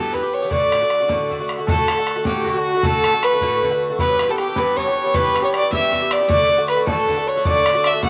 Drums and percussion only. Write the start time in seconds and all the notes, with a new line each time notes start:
0.14 bodhran
0.51 bodhran
0.72 bodhran
0.90 bodhran
1.09 bodhran
1.31 bodhran
1.49 bodhran
1.68 bodhran
1.88 bodhran
2.07 bodhran
2.25 bodhran
2.46 bodhran
2.83 bodhran
3.04 bodhran
3.23 bodhran
3.41 bodhran
3.62 bodhran
3.99 bodhran
4.19 bodhran
4.38 bodhran
4.56 bodhran
4.77 bodhran
5.14 bodhran
5.36 bodhran
5.54 bodhran
5.72 bodhran
5.93 bodhran
6.11 bodhran
6.29 bodhran
6.68 bodhran
6.87 bodhran
7.08 bodhran
7.45 bodhran
7.66 bodhran
7.84 bodhran
8.03 bodhran